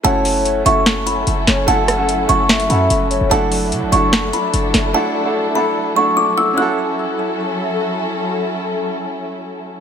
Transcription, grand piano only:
X:1
M:4/4
L:1/16
Q:1/4=147
K:F#m
V:1 name="Grand piano"
[A,CEFA]4- [A,CEFA] z [A,CEFA]6 z4 | [A,CEFA]2 z [A,CEFA]2 z [A,CEFA]3 z [A,CEFA]4- [A,CEFA] z | [A,DEFA]4- [A,DEFA] z [A,DEFA]6 z4 | [A,DEFA]2 z [A,DEFA]2 z [A,DEFA]3 z [A,DEFA]4- [A,DEFA] z |
[CEFA]16- | [CEFA]16 |]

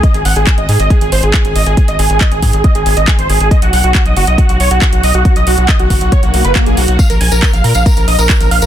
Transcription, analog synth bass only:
X:1
M:4/4
L:1/16
Q:1/4=138
K:Abmix
V:1 name="Analog synth bass" clef=bass
z A,,, A,,, A,,, z A,,, A,, A,,, z A,,, A,,, A,,, z A,,, A,,, A,,, | z A,,, A,,, A,,, z A,,, A,, A,,, z A,,, A,,, A,,, z A,,, A,,, A,,, | z =B,,, B,,, B,,, z B,,, ^F,,, B,,, z B,,, B,,, B,,, z B,,, B,,, B,,, | z =B,,, B,,, B,,, z B,,, ^F,,, B,,, z B,,, B,,, F,,, z B,,, B,,, B,,, |
z B,,, B,,, B,,, z B,,, B,, B,,, z B,,, B,,, B,,, z B,,, B,,, B,,, |]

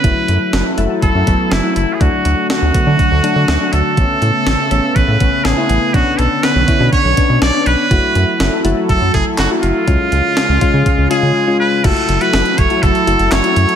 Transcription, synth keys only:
X:1
M:4/4
L:1/16
Q:1/4=122
K:F#m
V:1 name="Synth keys"
[F,A,E]4- [F,A,E] z [F,A,E] [F,A,E]3 [F,A,B,]3 [F,A,E]3 | [F,A,D]4- [F,A,D] z [F,A,B,] [F,A,D]3 [F,A,D]3 [F,A,D]3 | [A,B,C]4- [A,B,C] z [A,B,C] [A,B,C]3 [A,B,C]3 [A,B,E]3 | [B,CD]4- [B,CD] z [B,CE] [B,CD]3 [B,CD]3 [B,CD]3 |
[A,EF]4- [A,EF] z [A,EF] [A,EF]3 [A,EA]3 [A,EF]3 | [G,C^E]4- [G,CE] z [G,CE] [G,CG]3 [G,CE]3 [G,CE]3 | [A,EF]3 [A,EF]4 [A,EF]3 [A,EF]3 [A,EF]3 |]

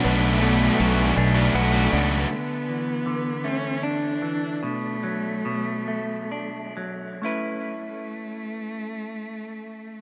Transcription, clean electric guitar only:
X:1
M:3/4
L:1/8
Q:1/4=74
K:A
V:1 name="Clean electric guitar"
[B,,F,DF] A, F, D F D | D, E, D, A, D E, | B,, F, B,, A, D F, | [A,CEB]6 |]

